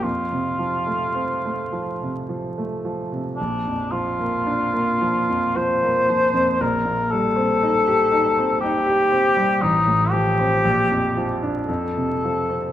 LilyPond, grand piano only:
\new Staff \with { instrumentName = "Grand piano" } { \clef bass \time 3/4 \key bes \major \tempo 4 = 56 f,16 c16 f16 a16 c'16 a16 f16 c16 f16 a16 f16 c16 | bes,,16 f,16 f16 bes16 d'16 bes16 f16 f,16 f16 bes16 f16 f,16 | bes,,16 bes,16 g16 c'16 ees'16 g'16 ees'16 c'16 ees'16 g'16 c'16 g16 | a,,16 a,16 f16 c'16 bes,,16 f,16 f16 d'16 f,16 c16 f16 c'16 | }